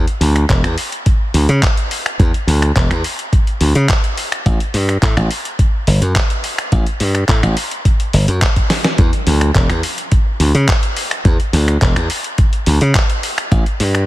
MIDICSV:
0, 0, Header, 1, 3, 480
1, 0, Start_track
1, 0, Tempo, 566038
1, 1861, Time_signature, 4, 2, 24, 8
1, 11927, End_track
2, 0, Start_track
2, 0, Title_t, "Slap bass"
2, 0, Program_c, 0, 36
2, 176, Note_on_c, 0, 38, 82
2, 374, Note_off_c, 0, 38, 0
2, 421, Note_on_c, 0, 28, 76
2, 521, Note_off_c, 0, 28, 0
2, 540, Note_on_c, 0, 40, 94
2, 637, Note_off_c, 0, 40, 0
2, 1138, Note_on_c, 0, 38, 75
2, 1239, Note_off_c, 0, 38, 0
2, 1262, Note_on_c, 0, 49, 87
2, 1358, Note_off_c, 0, 49, 0
2, 1861, Note_on_c, 0, 40, 92
2, 1961, Note_off_c, 0, 40, 0
2, 2098, Note_on_c, 0, 38, 85
2, 2295, Note_off_c, 0, 38, 0
2, 2341, Note_on_c, 0, 28, 80
2, 2441, Note_off_c, 0, 28, 0
2, 2463, Note_on_c, 0, 40, 97
2, 2558, Note_off_c, 0, 40, 0
2, 3059, Note_on_c, 0, 38, 74
2, 3160, Note_off_c, 0, 38, 0
2, 3182, Note_on_c, 0, 49, 84
2, 3278, Note_off_c, 0, 49, 0
2, 3781, Note_on_c, 0, 33, 96
2, 3881, Note_off_c, 0, 33, 0
2, 4020, Note_on_c, 0, 43, 85
2, 4216, Note_off_c, 0, 43, 0
2, 4261, Note_on_c, 0, 45, 81
2, 4361, Note_off_c, 0, 45, 0
2, 4383, Note_on_c, 0, 33, 96
2, 4478, Note_off_c, 0, 33, 0
2, 4979, Note_on_c, 0, 31, 75
2, 5080, Note_off_c, 0, 31, 0
2, 5101, Note_on_c, 0, 42, 85
2, 5197, Note_off_c, 0, 42, 0
2, 5700, Note_on_c, 0, 33, 94
2, 5801, Note_off_c, 0, 33, 0
2, 5939, Note_on_c, 0, 43, 84
2, 6136, Note_off_c, 0, 43, 0
2, 6179, Note_on_c, 0, 45, 80
2, 6280, Note_off_c, 0, 45, 0
2, 6301, Note_on_c, 0, 33, 95
2, 6397, Note_off_c, 0, 33, 0
2, 6898, Note_on_c, 0, 31, 78
2, 7000, Note_off_c, 0, 31, 0
2, 7021, Note_on_c, 0, 42, 87
2, 7117, Note_off_c, 0, 42, 0
2, 7620, Note_on_c, 0, 40, 91
2, 7720, Note_off_c, 0, 40, 0
2, 7859, Note_on_c, 0, 38, 87
2, 8056, Note_off_c, 0, 38, 0
2, 8099, Note_on_c, 0, 28, 78
2, 8200, Note_off_c, 0, 28, 0
2, 8222, Note_on_c, 0, 40, 100
2, 8318, Note_off_c, 0, 40, 0
2, 8817, Note_on_c, 0, 38, 75
2, 8919, Note_off_c, 0, 38, 0
2, 8942, Note_on_c, 0, 49, 88
2, 9038, Note_off_c, 0, 49, 0
2, 9541, Note_on_c, 0, 40, 93
2, 9641, Note_off_c, 0, 40, 0
2, 9779, Note_on_c, 0, 38, 90
2, 9976, Note_off_c, 0, 38, 0
2, 10021, Note_on_c, 0, 28, 81
2, 10121, Note_off_c, 0, 28, 0
2, 10145, Note_on_c, 0, 40, 98
2, 10239, Note_off_c, 0, 40, 0
2, 10743, Note_on_c, 0, 38, 78
2, 10842, Note_off_c, 0, 38, 0
2, 10866, Note_on_c, 0, 49, 84
2, 10960, Note_off_c, 0, 49, 0
2, 11461, Note_on_c, 0, 33, 92
2, 11561, Note_off_c, 0, 33, 0
2, 11703, Note_on_c, 0, 43, 88
2, 11898, Note_off_c, 0, 43, 0
2, 11927, End_track
3, 0, Start_track
3, 0, Title_t, "Drums"
3, 64, Note_on_c, 9, 42, 31
3, 148, Note_off_c, 9, 42, 0
3, 180, Note_on_c, 9, 46, 96
3, 264, Note_off_c, 9, 46, 0
3, 303, Note_on_c, 9, 26, 55
3, 303, Note_on_c, 9, 42, 44
3, 388, Note_off_c, 9, 26, 0
3, 388, Note_off_c, 9, 42, 0
3, 420, Note_on_c, 9, 42, 58
3, 421, Note_on_c, 9, 36, 111
3, 422, Note_on_c, 9, 39, 104
3, 505, Note_off_c, 9, 36, 0
3, 505, Note_off_c, 9, 42, 0
3, 507, Note_off_c, 9, 39, 0
3, 543, Note_on_c, 9, 26, 64
3, 543, Note_on_c, 9, 42, 33
3, 628, Note_off_c, 9, 26, 0
3, 628, Note_off_c, 9, 42, 0
3, 658, Note_on_c, 9, 46, 97
3, 743, Note_off_c, 9, 46, 0
3, 783, Note_on_c, 9, 42, 48
3, 868, Note_off_c, 9, 42, 0
3, 899, Note_on_c, 9, 42, 58
3, 901, Note_on_c, 9, 36, 113
3, 984, Note_off_c, 9, 42, 0
3, 986, Note_off_c, 9, 36, 0
3, 1139, Note_on_c, 9, 46, 100
3, 1223, Note_off_c, 9, 46, 0
3, 1263, Note_on_c, 9, 42, 46
3, 1348, Note_off_c, 9, 42, 0
3, 1380, Note_on_c, 9, 42, 57
3, 1381, Note_on_c, 9, 36, 105
3, 1382, Note_on_c, 9, 39, 104
3, 1465, Note_off_c, 9, 42, 0
3, 1466, Note_off_c, 9, 36, 0
3, 1467, Note_off_c, 9, 39, 0
3, 1504, Note_on_c, 9, 42, 31
3, 1589, Note_off_c, 9, 42, 0
3, 1621, Note_on_c, 9, 46, 94
3, 1705, Note_off_c, 9, 46, 0
3, 1747, Note_on_c, 9, 26, 81
3, 1747, Note_on_c, 9, 42, 46
3, 1831, Note_off_c, 9, 26, 0
3, 1831, Note_off_c, 9, 42, 0
3, 1862, Note_on_c, 9, 36, 110
3, 1863, Note_on_c, 9, 42, 57
3, 1946, Note_off_c, 9, 36, 0
3, 1948, Note_off_c, 9, 42, 0
3, 1987, Note_on_c, 9, 42, 32
3, 2072, Note_off_c, 9, 42, 0
3, 2103, Note_on_c, 9, 46, 96
3, 2188, Note_off_c, 9, 46, 0
3, 2225, Note_on_c, 9, 26, 55
3, 2225, Note_on_c, 9, 42, 47
3, 2310, Note_off_c, 9, 26, 0
3, 2310, Note_off_c, 9, 42, 0
3, 2341, Note_on_c, 9, 36, 108
3, 2342, Note_on_c, 9, 42, 60
3, 2344, Note_on_c, 9, 39, 109
3, 2426, Note_off_c, 9, 36, 0
3, 2427, Note_off_c, 9, 42, 0
3, 2429, Note_off_c, 9, 39, 0
3, 2466, Note_on_c, 9, 26, 62
3, 2466, Note_on_c, 9, 42, 33
3, 2550, Note_off_c, 9, 26, 0
3, 2550, Note_off_c, 9, 42, 0
3, 2581, Note_on_c, 9, 46, 90
3, 2666, Note_off_c, 9, 46, 0
3, 2705, Note_on_c, 9, 42, 49
3, 2790, Note_off_c, 9, 42, 0
3, 2821, Note_on_c, 9, 36, 112
3, 2822, Note_on_c, 9, 42, 60
3, 2906, Note_off_c, 9, 36, 0
3, 2907, Note_off_c, 9, 42, 0
3, 2945, Note_on_c, 9, 42, 33
3, 3030, Note_off_c, 9, 42, 0
3, 3058, Note_on_c, 9, 46, 95
3, 3143, Note_off_c, 9, 46, 0
3, 3182, Note_on_c, 9, 42, 48
3, 3267, Note_off_c, 9, 42, 0
3, 3299, Note_on_c, 9, 42, 60
3, 3301, Note_on_c, 9, 39, 105
3, 3302, Note_on_c, 9, 36, 107
3, 3384, Note_off_c, 9, 42, 0
3, 3386, Note_off_c, 9, 36, 0
3, 3386, Note_off_c, 9, 39, 0
3, 3425, Note_on_c, 9, 42, 32
3, 3510, Note_off_c, 9, 42, 0
3, 3540, Note_on_c, 9, 46, 91
3, 3625, Note_off_c, 9, 46, 0
3, 3665, Note_on_c, 9, 26, 78
3, 3665, Note_on_c, 9, 42, 49
3, 3750, Note_off_c, 9, 26, 0
3, 3750, Note_off_c, 9, 42, 0
3, 3782, Note_on_c, 9, 36, 104
3, 3782, Note_on_c, 9, 42, 58
3, 3866, Note_off_c, 9, 36, 0
3, 3867, Note_off_c, 9, 42, 0
3, 3904, Note_on_c, 9, 42, 34
3, 3989, Note_off_c, 9, 42, 0
3, 4020, Note_on_c, 9, 46, 91
3, 4105, Note_off_c, 9, 46, 0
3, 4145, Note_on_c, 9, 26, 55
3, 4145, Note_on_c, 9, 42, 49
3, 4230, Note_off_c, 9, 26, 0
3, 4230, Note_off_c, 9, 42, 0
3, 4261, Note_on_c, 9, 36, 105
3, 4261, Note_on_c, 9, 42, 63
3, 4263, Note_on_c, 9, 39, 105
3, 4346, Note_off_c, 9, 36, 0
3, 4346, Note_off_c, 9, 42, 0
3, 4348, Note_off_c, 9, 39, 0
3, 4385, Note_on_c, 9, 26, 60
3, 4385, Note_on_c, 9, 42, 34
3, 4469, Note_off_c, 9, 26, 0
3, 4469, Note_off_c, 9, 42, 0
3, 4500, Note_on_c, 9, 46, 91
3, 4584, Note_off_c, 9, 46, 0
3, 4624, Note_on_c, 9, 42, 53
3, 4709, Note_off_c, 9, 42, 0
3, 4740, Note_on_c, 9, 36, 106
3, 4741, Note_on_c, 9, 42, 63
3, 4825, Note_off_c, 9, 36, 0
3, 4826, Note_off_c, 9, 42, 0
3, 4980, Note_on_c, 9, 46, 93
3, 5065, Note_off_c, 9, 46, 0
3, 5104, Note_on_c, 9, 42, 52
3, 5189, Note_off_c, 9, 42, 0
3, 5220, Note_on_c, 9, 36, 104
3, 5220, Note_on_c, 9, 42, 63
3, 5222, Note_on_c, 9, 39, 108
3, 5304, Note_off_c, 9, 36, 0
3, 5305, Note_off_c, 9, 42, 0
3, 5307, Note_off_c, 9, 39, 0
3, 5344, Note_on_c, 9, 42, 33
3, 5428, Note_off_c, 9, 42, 0
3, 5460, Note_on_c, 9, 46, 88
3, 5544, Note_off_c, 9, 46, 0
3, 5583, Note_on_c, 9, 26, 75
3, 5583, Note_on_c, 9, 42, 49
3, 5668, Note_off_c, 9, 26, 0
3, 5668, Note_off_c, 9, 42, 0
3, 5699, Note_on_c, 9, 42, 60
3, 5700, Note_on_c, 9, 36, 109
3, 5783, Note_off_c, 9, 42, 0
3, 5784, Note_off_c, 9, 36, 0
3, 5821, Note_on_c, 9, 42, 35
3, 5906, Note_off_c, 9, 42, 0
3, 5937, Note_on_c, 9, 46, 92
3, 6022, Note_off_c, 9, 46, 0
3, 6061, Note_on_c, 9, 26, 52
3, 6061, Note_on_c, 9, 42, 51
3, 6146, Note_off_c, 9, 26, 0
3, 6146, Note_off_c, 9, 42, 0
3, 6177, Note_on_c, 9, 42, 63
3, 6179, Note_on_c, 9, 36, 106
3, 6179, Note_on_c, 9, 39, 116
3, 6262, Note_off_c, 9, 42, 0
3, 6264, Note_off_c, 9, 36, 0
3, 6264, Note_off_c, 9, 39, 0
3, 6302, Note_on_c, 9, 26, 59
3, 6302, Note_on_c, 9, 42, 36
3, 6387, Note_off_c, 9, 26, 0
3, 6387, Note_off_c, 9, 42, 0
3, 6417, Note_on_c, 9, 46, 92
3, 6502, Note_off_c, 9, 46, 0
3, 6542, Note_on_c, 9, 42, 51
3, 6627, Note_off_c, 9, 42, 0
3, 6659, Note_on_c, 9, 36, 109
3, 6659, Note_on_c, 9, 42, 66
3, 6744, Note_off_c, 9, 36, 0
3, 6744, Note_off_c, 9, 42, 0
3, 6783, Note_on_c, 9, 42, 36
3, 6867, Note_off_c, 9, 42, 0
3, 6898, Note_on_c, 9, 46, 94
3, 6983, Note_off_c, 9, 46, 0
3, 7023, Note_on_c, 9, 42, 50
3, 7107, Note_off_c, 9, 42, 0
3, 7139, Note_on_c, 9, 36, 109
3, 7139, Note_on_c, 9, 42, 63
3, 7141, Note_on_c, 9, 39, 113
3, 7224, Note_off_c, 9, 36, 0
3, 7224, Note_off_c, 9, 42, 0
3, 7226, Note_off_c, 9, 39, 0
3, 7262, Note_on_c, 9, 42, 35
3, 7263, Note_on_c, 9, 36, 57
3, 7347, Note_off_c, 9, 36, 0
3, 7347, Note_off_c, 9, 42, 0
3, 7378, Note_on_c, 9, 38, 57
3, 7378, Note_on_c, 9, 46, 93
3, 7462, Note_off_c, 9, 38, 0
3, 7462, Note_off_c, 9, 46, 0
3, 7500, Note_on_c, 9, 38, 68
3, 7500, Note_on_c, 9, 42, 52
3, 7585, Note_off_c, 9, 38, 0
3, 7585, Note_off_c, 9, 42, 0
3, 7618, Note_on_c, 9, 42, 61
3, 7620, Note_on_c, 9, 36, 114
3, 7702, Note_off_c, 9, 42, 0
3, 7704, Note_off_c, 9, 36, 0
3, 7742, Note_on_c, 9, 42, 35
3, 7827, Note_off_c, 9, 42, 0
3, 7858, Note_on_c, 9, 46, 94
3, 7943, Note_off_c, 9, 46, 0
3, 7981, Note_on_c, 9, 26, 53
3, 7981, Note_on_c, 9, 42, 48
3, 8066, Note_off_c, 9, 26, 0
3, 8066, Note_off_c, 9, 42, 0
3, 8098, Note_on_c, 9, 42, 64
3, 8100, Note_on_c, 9, 36, 110
3, 8101, Note_on_c, 9, 39, 112
3, 8183, Note_off_c, 9, 42, 0
3, 8185, Note_off_c, 9, 36, 0
3, 8185, Note_off_c, 9, 39, 0
3, 8222, Note_on_c, 9, 26, 60
3, 8222, Note_on_c, 9, 42, 36
3, 8307, Note_off_c, 9, 26, 0
3, 8307, Note_off_c, 9, 42, 0
3, 8339, Note_on_c, 9, 46, 99
3, 8424, Note_off_c, 9, 46, 0
3, 8463, Note_on_c, 9, 42, 54
3, 8547, Note_off_c, 9, 42, 0
3, 8578, Note_on_c, 9, 42, 64
3, 8580, Note_on_c, 9, 36, 113
3, 8663, Note_off_c, 9, 42, 0
3, 8665, Note_off_c, 9, 36, 0
3, 8819, Note_on_c, 9, 46, 98
3, 8904, Note_off_c, 9, 46, 0
3, 8944, Note_on_c, 9, 42, 51
3, 9029, Note_off_c, 9, 42, 0
3, 9059, Note_on_c, 9, 42, 64
3, 9061, Note_on_c, 9, 36, 112
3, 9062, Note_on_c, 9, 39, 115
3, 9144, Note_off_c, 9, 42, 0
3, 9146, Note_off_c, 9, 36, 0
3, 9147, Note_off_c, 9, 39, 0
3, 9183, Note_on_c, 9, 42, 34
3, 9268, Note_off_c, 9, 42, 0
3, 9299, Note_on_c, 9, 46, 99
3, 9384, Note_off_c, 9, 46, 0
3, 9423, Note_on_c, 9, 26, 74
3, 9423, Note_on_c, 9, 42, 53
3, 9508, Note_off_c, 9, 26, 0
3, 9508, Note_off_c, 9, 42, 0
3, 9540, Note_on_c, 9, 42, 59
3, 9541, Note_on_c, 9, 36, 121
3, 9625, Note_off_c, 9, 42, 0
3, 9626, Note_off_c, 9, 36, 0
3, 9665, Note_on_c, 9, 42, 34
3, 9749, Note_off_c, 9, 42, 0
3, 9781, Note_on_c, 9, 46, 100
3, 9866, Note_off_c, 9, 46, 0
3, 9904, Note_on_c, 9, 26, 58
3, 9904, Note_on_c, 9, 42, 49
3, 9989, Note_off_c, 9, 26, 0
3, 9989, Note_off_c, 9, 42, 0
3, 10020, Note_on_c, 9, 42, 62
3, 10022, Note_on_c, 9, 36, 120
3, 10022, Note_on_c, 9, 39, 120
3, 10105, Note_off_c, 9, 42, 0
3, 10106, Note_off_c, 9, 36, 0
3, 10107, Note_off_c, 9, 39, 0
3, 10144, Note_on_c, 9, 26, 63
3, 10144, Note_on_c, 9, 42, 35
3, 10229, Note_off_c, 9, 26, 0
3, 10229, Note_off_c, 9, 42, 0
3, 10260, Note_on_c, 9, 46, 107
3, 10344, Note_off_c, 9, 46, 0
3, 10383, Note_on_c, 9, 42, 52
3, 10467, Note_off_c, 9, 42, 0
3, 10499, Note_on_c, 9, 42, 62
3, 10502, Note_on_c, 9, 36, 118
3, 10584, Note_off_c, 9, 42, 0
3, 10587, Note_off_c, 9, 36, 0
3, 10623, Note_on_c, 9, 42, 35
3, 10708, Note_off_c, 9, 42, 0
3, 10739, Note_on_c, 9, 46, 103
3, 10824, Note_off_c, 9, 46, 0
3, 10863, Note_on_c, 9, 42, 49
3, 10948, Note_off_c, 9, 42, 0
3, 10980, Note_on_c, 9, 42, 63
3, 10982, Note_on_c, 9, 36, 117
3, 10982, Note_on_c, 9, 39, 116
3, 11064, Note_off_c, 9, 42, 0
3, 11067, Note_off_c, 9, 36, 0
3, 11067, Note_off_c, 9, 39, 0
3, 11105, Note_on_c, 9, 42, 33
3, 11190, Note_off_c, 9, 42, 0
3, 11222, Note_on_c, 9, 46, 98
3, 11307, Note_off_c, 9, 46, 0
3, 11345, Note_on_c, 9, 26, 79
3, 11345, Note_on_c, 9, 42, 50
3, 11430, Note_off_c, 9, 26, 0
3, 11430, Note_off_c, 9, 42, 0
3, 11462, Note_on_c, 9, 36, 123
3, 11462, Note_on_c, 9, 42, 59
3, 11547, Note_off_c, 9, 36, 0
3, 11547, Note_off_c, 9, 42, 0
3, 11586, Note_on_c, 9, 42, 33
3, 11671, Note_off_c, 9, 42, 0
3, 11702, Note_on_c, 9, 46, 103
3, 11787, Note_off_c, 9, 46, 0
3, 11827, Note_on_c, 9, 26, 61
3, 11827, Note_on_c, 9, 42, 46
3, 11912, Note_off_c, 9, 26, 0
3, 11912, Note_off_c, 9, 42, 0
3, 11927, End_track
0, 0, End_of_file